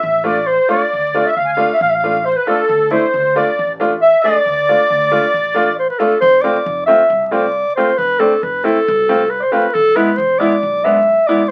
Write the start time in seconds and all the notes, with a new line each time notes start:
Already playing: E5
0.03 A1
0.24 A3 D4 F4 D5
0.47 C5
0.69 A3 D4 F4 D5
0.93 D2
1.15 A3 D4 F4
1.27 E5
1.36 D2 F5
1.45 G#5
1.52 F5
1.57 A3 D4 F4
1.73 E5
1.81 A1 F5
1.90 E5
1.95 F5
2.04 A3 D4 F4
2.25 C5
2.36 B4
2.46 A3 D4 F4 A4
2.69 D2
2.91 A3 D4 E4 C5
3.14 D2
3.36 A3 D4 F4 D5
3.59 A1
3.80 A3 D4 F4
4.02 E5
4.23 A3 D4 G#4 D5
4.46 D2
4.69 A3 D4 F4
4.90 D2
5.12 A3 D4 F4
5.34 A1
5.55 A3 D4 F4
5.79 C5
5.90 B4
5.99 A3 D4 F4 A4
6.21 F1 C5
6.42 A3 C4 F4 D5
6.66 F1
6.86 A3 C4 F4 E5
7.10 C2
7.26 E5
7.31 A3 C4 F4 D5
7.76 A3 C4 F4 C5
7.97 F1 B4
8.19 A3 C4 D4 A4
8.43 F1 B4
8.64 A3 C4 E4 A4
8.88 C2
9.09 A3 C4 F4
9.30 B4
9.40 C5 D5
9.51 A3 C4 F4 B4
9.73 E1 A4
9.95 G#3 B3 E4 B4
10.16 E1 C5
10.39 G#3 B3 E4 D5
10.63 B1
10.84 G#3 B3 D4 E5
11.27 G#3 B3 E4 D5